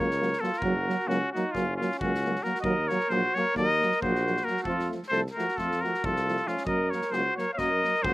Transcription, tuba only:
0, 0, Header, 1, 2, 480
1, 0, Start_track
1, 0, Tempo, 448430
1, 657, Time_signature, 9, 3, 24, 8
1, 8708, End_track
2, 0, Start_track
2, 0, Title_t, "Tuba"
2, 0, Program_c, 0, 58
2, 0, Note_on_c, 0, 37, 90
2, 351, Note_off_c, 0, 37, 0
2, 664, Note_on_c, 0, 30, 95
2, 935, Note_off_c, 0, 30, 0
2, 1150, Note_on_c, 0, 37, 90
2, 1303, Note_off_c, 0, 37, 0
2, 1652, Note_on_c, 0, 30, 88
2, 1925, Note_off_c, 0, 30, 0
2, 2148, Note_on_c, 0, 37, 89
2, 2518, Note_off_c, 0, 37, 0
2, 2823, Note_on_c, 0, 39, 83
2, 3096, Note_off_c, 0, 39, 0
2, 3317, Note_on_c, 0, 34, 94
2, 3469, Note_off_c, 0, 34, 0
2, 3803, Note_on_c, 0, 39, 90
2, 4079, Note_off_c, 0, 39, 0
2, 4315, Note_on_c, 0, 34, 103
2, 4683, Note_off_c, 0, 34, 0
2, 4974, Note_on_c, 0, 41, 83
2, 5249, Note_off_c, 0, 41, 0
2, 5475, Note_on_c, 0, 36, 99
2, 5627, Note_off_c, 0, 36, 0
2, 5974, Note_on_c, 0, 41, 83
2, 6245, Note_off_c, 0, 41, 0
2, 6462, Note_on_c, 0, 36, 91
2, 6833, Note_off_c, 0, 36, 0
2, 7126, Note_on_c, 0, 42, 88
2, 7401, Note_off_c, 0, 42, 0
2, 7625, Note_on_c, 0, 37, 90
2, 7778, Note_off_c, 0, 37, 0
2, 8118, Note_on_c, 0, 42, 90
2, 8392, Note_off_c, 0, 42, 0
2, 8598, Note_on_c, 0, 37, 94
2, 8708, Note_off_c, 0, 37, 0
2, 8708, End_track
0, 0, End_of_file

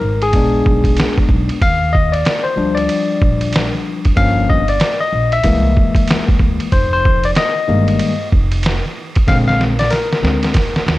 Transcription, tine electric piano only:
0, 0, Header, 1, 2, 480
1, 0, Start_track
1, 0, Key_signature, -3, "major"
1, 0, Tempo, 638298
1, 1212, Time_signature, 4, 2, 24, 8
1, 8261, End_track
2, 0, Start_track
2, 0, Title_t, "Tine electric piano"
2, 0, Program_c, 0, 4
2, 0, Note_on_c, 0, 70, 81
2, 170, Note_off_c, 0, 70, 0
2, 170, Note_on_c, 0, 68, 78
2, 258, Note_on_c, 0, 56, 54
2, 262, Note_on_c, 0, 59, 49
2, 266, Note_on_c, 0, 62, 64
2, 855, Note_off_c, 0, 68, 0
2, 1185, Note_off_c, 0, 56, 0
2, 1187, Note_off_c, 0, 59, 0
2, 1189, Note_off_c, 0, 62, 0
2, 1219, Note_on_c, 0, 77, 107
2, 1450, Note_on_c, 0, 75, 91
2, 1463, Note_off_c, 0, 77, 0
2, 1597, Note_on_c, 0, 74, 82
2, 1604, Note_off_c, 0, 75, 0
2, 1833, Note_on_c, 0, 72, 89
2, 1846, Note_off_c, 0, 74, 0
2, 1924, Note_on_c, 0, 53, 53
2, 1930, Note_on_c, 0, 55, 45
2, 1935, Note_on_c, 0, 62, 55
2, 2066, Note_on_c, 0, 74, 80
2, 2084, Note_off_c, 0, 72, 0
2, 2763, Note_off_c, 0, 74, 0
2, 3098, Note_off_c, 0, 53, 0
2, 3101, Note_off_c, 0, 55, 0
2, 3103, Note_off_c, 0, 62, 0
2, 3130, Note_on_c, 0, 53, 56
2, 3134, Note_on_c, 0, 58, 54
2, 3135, Note_on_c, 0, 77, 104
2, 3137, Note_on_c, 0, 61, 60
2, 3381, Note_off_c, 0, 77, 0
2, 3381, Note_on_c, 0, 75, 94
2, 3472, Note_off_c, 0, 53, 0
2, 3474, Note_off_c, 0, 58, 0
2, 3476, Note_off_c, 0, 61, 0
2, 3528, Note_on_c, 0, 74, 86
2, 3529, Note_off_c, 0, 75, 0
2, 3764, Note_on_c, 0, 75, 90
2, 3771, Note_off_c, 0, 74, 0
2, 4007, Note_on_c, 0, 76, 89
2, 4010, Note_off_c, 0, 75, 0
2, 4090, Note_on_c, 0, 52, 59
2, 4094, Note_on_c, 0, 56, 52
2, 4100, Note_on_c, 0, 58, 65
2, 4694, Note_off_c, 0, 76, 0
2, 5021, Note_off_c, 0, 52, 0
2, 5023, Note_off_c, 0, 56, 0
2, 5026, Note_off_c, 0, 58, 0
2, 5056, Note_on_c, 0, 72, 93
2, 5202, Note_off_c, 0, 72, 0
2, 5211, Note_on_c, 0, 72, 84
2, 5453, Note_off_c, 0, 72, 0
2, 5453, Note_on_c, 0, 74, 90
2, 5491, Note_off_c, 0, 74, 0
2, 5545, Note_on_c, 0, 75, 95
2, 5773, Note_on_c, 0, 51, 52
2, 5776, Note_on_c, 0, 55, 52
2, 5778, Note_on_c, 0, 56, 48
2, 5781, Note_on_c, 0, 58, 62
2, 6114, Note_off_c, 0, 51, 0
2, 6115, Note_off_c, 0, 55, 0
2, 6116, Note_off_c, 0, 56, 0
2, 6118, Note_off_c, 0, 58, 0
2, 6228, Note_off_c, 0, 75, 0
2, 6971, Note_on_c, 0, 50, 57
2, 6976, Note_on_c, 0, 56, 55
2, 6980, Note_on_c, 0, 60, 67
2, 6980, Note_on_c, 0, 77, 108
2, 7045, Note_off_c, 0, 77, 0
2, 7126, Note_on_c, 0, 77, 102
2, 7233, Note_off_c, 0, 77, 0
2, 7313, Note_off_c, 0, 50, 0
2, 7315, Note_off_c, 0, 56, 0
2, 7317, Note_off_c, 0, 60, 0
2, 7365, Note_on_c, 0, 74, 95
2, 7448, Note_off_c, 0, 74, 0
2, 7451, Note_on_c, 0, 70, 71
2, 7688, Note_on_c, 0, 50, 48
2, 7690, Note_on_c, 0, 56, 44
2, 7693, Note_on_c, 0, 60, 53
2, 7906, Note_off_c, 0, 50, 0
2, 7907, Note_off_c, 0, 56, 0
2, 7909, Note_off_c, 0, 60, 0
2, 8141, Note_off_c, 0, 70, 0
2, 8261, End_track
0, 0, End_of_file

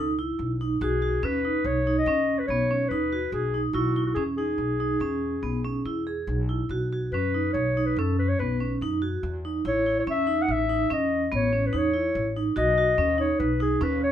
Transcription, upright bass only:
0, 0, Header, 1, 2, 480
1, 0, Start_track
1, 0, Tempo, 418410
1, 932, Time_signature, 7, 2, 24, 8
1, 4768, Tempo, 423131
1, 10528, Tempo, 416956
1, 16152, End_track
2, 0, Start_track
2, 0, Title_t, "Upright bass"
2, 0, Program_c, 0, 32
2, 0, Note_on_c, 0, 37, 68
2, 371, Note_off_c, 0, 37, 0
2, 446, Note_on_c, 0, 35, 80
2, 851, Note_off_c, 0, 35, 0
2, 929, Note_on_c, 0, 35, 87
2, 1333, Note_off_c, 0, 35, 0
2, 1406, Note_on_c, 0, 39, 80
2, 1811, Note_off_c, 0, 39, 0
2, 1885, Note_on_c, 0, 35, 84
2, 2290, Note_off_c, 0, 35, 0
2, 2363, Note_on_c, 0, 39, 86
2, 2768, Note_off_c, 0, 39, 0
2, 2849, Note_on_c, 0, 35, 76
2, 3250, Note_off_c, 0, 35, 0
2, 3334, Note_on_c, 0, 39, 71
2, 3734, Note_off_c, 0, 39, 0
2, 3811, Note_on_c, 0, 35, 83
2, 4212, Note_off_c, 0, 35, 0
2, 4282, Note_on_c, 0, 35, 81
2, 4688, Note_off_c, 0, 35, 0
2, 4769, Note_on_c, 0, 40, 75
2, 5170, Note_off_c, 0, 40, 0
2, 5248, Note_on_c, 0, 35, 74
2, 5649, Note_off_c, 0, 35, 0
2, 5727, Note_on_c, 0, 40, 75
2, 6128, Note_off_c, 0, 40, 0
2, 6207, Note_on_c, 0, 35, 70
2, 6610, Note_off_c, 0, 35, 0
2, 6691, Note_on_c, 0, 40, 65
2, 7094, Note_off_c, 0, 40, 0
2, 7169, Note_on_c, 0, 35, 79
2, 7575, Note_off_c, 0, 35, 0
2, 7645, Note_on_c, 0, 35, 78
2, 8052, Note_off_c, 0, 35, 0
2, 8128, Note_on_c, 0, 42, 67
2, 8534, Note_off_c, 0, 42, 0
2, 8610, Note_on_c, 0, 35, 77
2, 9015, Note_off_c, 0, 35, 0
2, 9088, Note_on_c, 0, 42, 82
2, 9493, Note_off_c, 0, 42, 0
2, 9571, Note_on_c, 0, 35, 71
2, 9973, Note_off_c, 0, 35, 0
2, 10049, Note_on_c, 0, 42, 73
2, 10450, Note_off_c, 0, 42, 0
2, 10525, Note_on_c, 0, 40, 84
2, 10930, Note_off_c, 0, 40, 0
2, 11004, Note_on_c, 0, 33, 82
2, 11410, Note_off_c, 0, 33, 0
2, 11487, Note_on_c, 0, 40, 73
2, 11892, Note_off_c, 0, 40, 0
2, 11967, Note_on_c, 0, 33, 79
2, 12372, Note_off_c, 0, 33, 0
2, 12454, Note_on_c, 0, 40, 80
2, 12856, Note_off_c, 0, 40, 0
2, 12930, Note_on_c, 0, 33, 79
2, 13332, Note_off_c, 0, 33, 0
2, 13412, Note_on_c, 0, 40, 69
2, 13813, Note_off_c, 0, 40, 0
2, 13887, Note_on_c, 0, 33, 83
2, 14290, Note_off_c, 0, 33, 0
2, 14362, Note_on_c, 0, 35, 87
2, 14767, Note_off_c, 0, 35, 0
2, 14838, Note_on_c, 0, 39, 84
2, 15243, Note_off_c, 0, 39, 0
2, 15321, Note_on_c, 0, 35, 82
2, 15726, Note_off_c, 0, 35, 0
2, 15794, Note_on_c, 0, 39, 87
2, 16152, Note_off_c, 0, 39, 0
2, 16152, End_track
0, 0, End_of_file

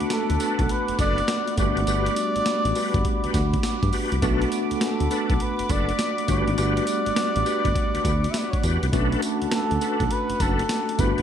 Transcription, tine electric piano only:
0, 0, Header, 1, 2, 480
1, 0, Start_track
1, 0, Key_signature, 2, "minor"
1, 0, Tempo, 588235
1, 1528, Time_signature, 4, 2, 24, 8
1, 9157, End_track
2, 0, Start_track
2, 0, Title_t, "Tine electric piano"
2, 0, Program_c, 0, 4
2, 0, Control_c, 0, 64, 127
2, 0, Note_on_c, 0, 57, 77
2, 0, Note_on_c, 0, 59, 73
2, 0, Note_on_c, 0, 62, 74
2, 0, Note_on_c, 0, 66, 88
2, 1250, Note_off_c, 0, 57, 0
2, 1253, Note_off_c, 0, 59, 0
2, 1257, Note_off_c, 0, 62, 0
2, 1260, Note_off_c, 0, 66, 0
2, 1279, Note_on_c, 0, 57, 75
2, 1285, Note_on_c, 0, 59, 68
2, 1292, Note_on_c, 0, 62, 66
2, 1296, Control_c, 0, 64, 0
2, 1299, Note_on_c, 0, 66, 82
2, 1444, Control_c, 0, 64, 127
2, 3171, Note_off_c, 0, 57, 0
2, 3174, Note_off_c, 0, 59, 0
2, 3177, Note_off_c, 0, 62, 0
2, 3180, Note_off_c, 0, 66, 0
2, 3439, Note_on_c, 0, 57, 77
2, 3445, Note_on_c, 0, 59, 72
2, 3452, Note_on_c, 0, 62, 70
2, 3458, Control_c, 0, 64, 0
2, 3458, Note_on_c, 0, 66, 89
2, 3598, Control_c, 0, 64, 127
2, 5090, Note_off_c, 0, 57, 0
2, 5093, Note_off_c, 0, 59, 0
2, 5097, Note_off_c, 0, 62, 0
2, 5100, Note_off_c, 0, 66, 0
2, 5119, Note_on_c, 0, 57, 71
2, 5126, Note_on_c, 0, 59, 66
2, 5132, Note_on_c, 0, 62, 69
2, 5136, Control_c, 0, 64, 0
2, 5139, Note_on_c, 0, 66, 80
2, 5277, Control_c, 0, 64, 127
2, 7011, Note_off_c, 0, 57, 0
2, 7014, Note_off_c, 0, 59, 0
2, 7017, Note_off_c, 0, 62, 0
2, 7020, Note_off_c, 0, 66, 0
2, 7280, Note_on_c, 0, 57, 84
2, 7286, Note_on_c, 0, 61, 70
2, 7293, Note_on_c, 0, 62, 79
2, 7297, Control_c, 0, 64, 0
2, 7299, Note_on_c, 0, 66, 85
2, 7423, Control_c, 0, 64, 127
2, 8931, Note_off_c, 0, 57, 0
2, 8934, Note_off_c, 0, 61, 0
2, 8937, Note_off_c, 0, 62, 0
2, 8941, Note_off_c, 0, 66, 0
2, 8959, Note_on_c, 0, 57, 74
2, 8965, Note_on_c, 0, 59, 63
2, 8971, Note_on_c, 0, 62, 64
2, 8978, Note_on_c, 0, 64, 60
2, 8979, Control_c, 0, 64, 0
2, 9031, Note_on_c, 0, 66, 77
2, 9042, Note_off_c, 0, 64, 0
2, 9129, Control_c, 0, 64, 127
2, 9157, Note_off_c, 0, 57, 0
2, 9157, Note_off_c, 0, 59, 0
2, 9157, Note_off_c, 0, 62, 0
2, 9157, Note_off_c, 0, 66, 0
2, 9157, End_track
0, 0, End_of_file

